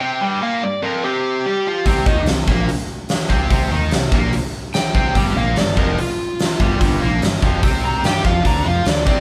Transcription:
Already playing: G5
0.00 C3 C4
0.21 G2 G3
0.41 A#2 A#3 F5
0.62 G2 D5
0.82 F2 F3 A#4
1.04 C3 C4 G4
1.46 G3 G4
1.67 F3 F4
1.86 C2 C3 C4, kick, open hi-hat
2.06 D#2 D#3 D#4, kick
2.26 C2 C3, snare, open hi-hat
2.47 A#1 A#2 A#3, kick
2.69 open hi-hat
3.09 snare, open hi-hat
3.29 C2 C3 C4, kick
3.50 C2 C3 C4, kick, open hi-hat
3.71 D#2 D#3 D#4
3.91 C2 C3, snare, open hi-hat
4.12 A#1 A#2 A#3, kick
4.33 open hi-hat
4.74 G5, snare, open hi-hat
4.95 C2 C3 C4, kick
5.15 G1 G2 G3, kick, open hi-hat
5.36 A#1 A#2 A#3 F5
5.55 G1 G2 D5, snare, open hi-hat
5.77 F1 F2 F3 A#4, kick
5.99 F4, open hi-hat
6.39 snare, open hi-hat
6.60 G1 G2 G3, kick
6.81 G1 G2 G3, kick, open hi-hat
7.00 A#1 A#2 A#3
7.20 G1 G2, snare, open hi-hat
7.42 F1 F2 F3, kick
7.62 C2 C3 C4, kick, open hi-hat
7.85 A#5
8.03 G2 G3 G4 G5, snare, open hi-hat
8.24 F2 F3 F4 F5, kick
8.44 D2 D3 D4 A#5, kick, open hi-hat
8.65 F2 F3 F4 F5
8.85 D2 D3 D5, snare, open hi-hat
9.06 C2 C3 C4 D5, kick

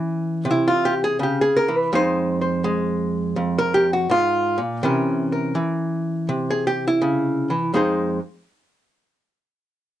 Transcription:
Already playing: E3 C#4 C#5
0.45 C3
0.51 E4
0.68 F4
0.85 G4
1.04 G#4
1.19 C#3 G4
1.41 G#4
1.56 A#4
1.68 E3
1.77 B4
1.93 F2 G#3 D#4 C5
2.41 C5
2.64 G#3
3.36 F2
3.58 A#4
3.74 G4
3.93 F#4
4.10 G#2 F4
4.58 A#2
4.83 C3 E3 C#4 A#4
5.32 A#4
5.55 E3
6.29 C3
6.50 G#4
6.67 G4
6.88 E4
7.02 C#3
7.50 E3
7.74 F2 G#3 D#4 G#4 C5

